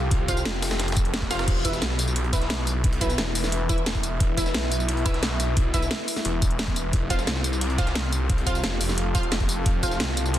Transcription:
Already playing: detuned saw bass C2, ambient pad F4 G4 A4
0.11 kick, closed hi-hat
0.28 synth stab F4 C5 F5, kick, closed hi-hat, tambourine
0.37 closed hi-hat, tambourine
0.45 detuned saw bass F1, snare, closed hi-hat
0.62 snare, closed hi-hat, open hi-hat, tambourine
0.71 snare, closed hi-hat, tambourine
0.80 snare, closed hi-hat
0.88 closed hi-hat
0.92 snare, closed hi-hat
0.96 detuned saw bass F1, kick, closed hi-hat, tambourine
1.05 closed hi-hat
1.14 snare, closed hi-hat
1.22 kick, snare
1.31 synth stab F4 C5 F5, snare, closed hi-hat, tambourine
1.39 snare, closed hi-hat
1.48 detuned saw bass E1, ambient pad E4 B4 E5, kick, closed hi-hat, crash
1.65 synth stab E4 B4 E5, kick, closed hi-hat, tambourine
1.73 snare, tambourine
1.82 detuned saw bass B1, snare, closed hi-hat
1.90 snare
1.99 closed hi-hat, tambourine
2.07 tambourine
2.16 closed hi-hat
2.24 closed hi-hat
2.33 synth stab E4 B4 E5, kick, snare, closed hi-hat, tambourine
2.41 snare, closed hi-hat
2.50 snare, closed hi-hat
2.67 closed hi-hat, tambourine
2.84 kick, closed hi-hat
2.93 closed hi-hat
3.01 synth stab E4 B4 E5, kick, closed hi-hat, tambourine
3.10 closed hi-hat, tambourine
3.18 detuned saw bass E1, snare, closed hi-hat
3.35 closed hi-hat, open hi-hat, tambourine
3.44 snare, tambourine
3.52 closed hi-hat
3.69 synth stab E4 B4 E5, kick, closed hi-hat, tambourine
3.78 closed hi-hat
3.86 snare, closed hi-hat
3.95 kick, closed hi-hat
4.03 closed hi-hat, tambourine
4.20 detuned saw bass E1, kick, closed hi-hat
4.37 synth stab E4 B4 E5, kick, closed hi-hat, tambourine
4.46 snare, tambourine
4.54 detuned saw bass B1, snare, closed hi-hat
4.63 snare
4.72 closed hi-hat, tambourine
4.80 tambourine
4.89 closed hi-hat
4.97 closed hi-hat
5.06 synth stab E4 B4 E5, kick, snare, closed hi-hat, tambourine
5.14 snare, closed hi-hat
5.23 snare, closed hi-hat
5.40 snare, closed hi-hat, tambourine
5.57 kick, closed hi-hat
5.74 synth stab E4 B4 E5, kick, closed hi-hat, tambourine
5.82 closed hi-hat, tambourine
5.91 snare, closed hi-hat
6.08 closed hi-hat, open hi-hat, tambourine
6.16 snare, tambourine
6.25 detuned saw bass E1, closed hi-hat
6.42 kick, closed hi-hat, tambourine
6.51 closed hi-hat
6.59 snare, closed hi-hat
6.68 kick, closed hi-hat
6.76 closed hi-hat, tambourine
6.93 detuned saw bass F1, ambient pad F4 G4 A4, kick, closed hi-hat
7.10 synth stab F4 C5 F5, kick, closed hi-hat, tambourine
7.19 snare, tambourine
7.27 detuned saw bass C2, snare, closed hi-hat
7.36 snare
7.44 closed hi-hat, tambourine
7.53 tambourine
7.61 closed hi-hat
7.70 closed hi-hat
7.78 synth stab F4 C5 F5, kick, snare, closed hi-hat, tambourine
7.87 snare, closed hi-hat
7.95 snare, closed hi-hat
8.12 closed hi-hat, tambourine
8.30 kick, closed hi-hat
8.38 closed hi-hat
8.47 synth stab F4 C5 F5, kick, closed hi-hat, tambourine
8.55 closed hi-hat, tambourine
8.64 detuned saw bass F1, snare, closed hi-hat
8.81 closed hi-hat, open hi-hat, tambourine
8.89 snare, tambourine
8.98 closed hi-hat
9.15 synth stab F4 C5 F5, kick, closed hi-hat, tambourine
9.23 closed hi-hat
9.32 snare, closed hi-hat
9.40 kick, closed hi-hat
9.49 closed hi-hat, tambourine
9.66 detuned saw bass F1, kick, closed hi-hat
9.83 synth stab F4 C5 F5, kick, closed hi-hat, tambourine
9.91 snare, tambourine
10.00 detuned saw bass C2, snare, closed hi-hat
10.09 snare
10.17 closed hi-hat, tambourine
10.26 tambourine
10.34 closed hi-hat

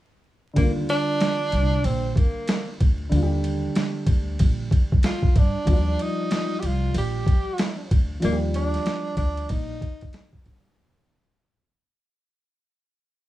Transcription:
0.54 upright bass D#2, grand piano D3 G3, tenor saxophone A#3, kick, ride
0.58 grand piano D4 F4
0.89 tenor saxophone D4, ride
1.20 snare, hi-hat pedal, ride
1.52 upright bass C2, ride
1.84 upright bass A#1, tenor saxophone C4, ride
2.13 tenor saxophone C4, kick
2.17 tenor saxophone A#3, ride
2.47 snare, hi-hat pedal, ride
2.80 upright bass D2, kick, ride
3.09 upright bass D#2, grand piano D3 G3, ride
3.14 grand piano D4 F4
3.22 grand piano G4
3.44 ride
3.75 snare, hi-hat pedal, ride
4.06 upright bass D2, kick, ride
4.39 upright bass A#1, kick, ride
4.71 kick, ride
4.92 kick
5.03 tenor saxophone F4, snare, hi-hat pedal, ride
5.22 kick
5.36 upright bass G2, tenor saxophone D4, kick, ride
5.65 upright bass D#2, grand piano F3 F#3, kick, ride
5.70 grand piano F4 D5
5.74 grand piano G3
5.99 tenor saxophone D#4, ride
6.31 snare, hi-hat pedal, ride
6.60 upright bass C2, tenor saxophone G4, ride
6.66 tenor saxophone F4
6.94 upright bass A#1, tenor saxophone G4, ride
7.26 kick, ride
7.58 snare, hi-hat pedal, ride
7.91 upright bass D2, kick, ride
8.20 upright bass D#2, grand piano F3 G3, ride
8.24 tenor saxophone A#3, grand piano F4 D5
8.33 grand piano G4
8.54 tenor saxophone D4, ride
8.74 snare, ride
8.86 snare, hi-hat pedal, ride
9.17 upright bass D2, tenor saxophone D4, kick, ride
9.37 ride
9.49 upright bass A#1, tenor saxophone D#4, kick, ride
9.81 kick, ride
10.01 kick, ride
10.13 snare, hi-hat pedal, ride
10.33 kick
10.46 upright bass G2, kick, ride
10.65 snare, ride

